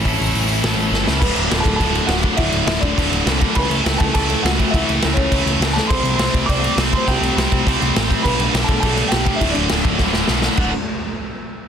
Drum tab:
CC |--------|xxxxxxxx|xxxxxxxx|xxxxxxxx|
HH |oooooo--|--------|--------|--------|
SD |----o-oo|--o---o-|--o---o-|--o---o-|
BD |o-------|o--oo--o|o--oo--o|o--oo--o|

CC |xxxxxxx-|xxxxxxxx|xxxxxxxx|xxxxxxxx|
HH |--------|--------|--------|--------|
SD |--o---oo|--o---o-|--o---o-|--o---o-|
BD |o--oo---|o--oo--o|o--oo--o|o--oo--o|

CC |xxxx----|x-------|
HH |--------|--------|
SD |--o-oooo|--------|
BD |o--oo---|o-------|